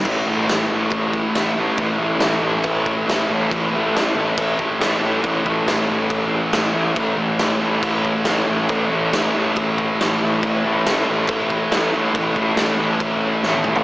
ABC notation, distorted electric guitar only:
X:1
M:4/4
L:1/8
Q:1/4=139
K:C
V:1 name="Distorted electric guitar" clef=bass
[A,,E,A,] [E,A,] [A,,E,A,] [E,A,]3 [A,,E,A,] [E,A,] | [A,,E,A,] [E,A,] [A,,E,A,] [E,A,]3 [A,,E,A,] [E,A,] | [A,,E,A,] [E,A,] [A,,E,A,] [E,A,]3 [A,,E,A,] [E,A,] | [A,,E,A,] [E,A,] [A,,E,A,] [E,A,]3 [A,,E,A,] [E,A,] |
[A,,E,A,] [E,A,] [A,,E,A,] [E,A,]3 [A,,E,A,] [E,A,] | [A,,E,A,] [E,A,] [A,,E,A,] [E,A,]3 [A,,E,A,] [E,A,] | [A,,E,A,] [E,A,] [A,,E,A,] [E,A,]3 [A,,E,A,] [E,A,] | [A,,E,A,] [E,A,] [A,,E,A,] [E,A,]3 [A,,E,A,] [E,A,] |]